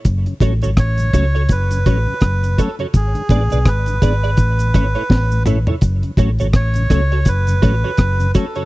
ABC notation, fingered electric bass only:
X:1
M:4/4
L:1/16
Q:"Swing 16ths" 1/4=83
K:F#m
V:1 name="Fingered electric bass" clef=bass
F,,, z A,,, G,,, A,,,2 C,,2 F,,,2 A,,, z F,,,2 z2 | G,,, z A,,, B,,, G,,,2 G,,,2 A,,,2 G,,, z A,,,3 z | F,,, z A,,, G,,, A,,,2 C,,2 F,,,2 A,,, z F,,,2 z2 |]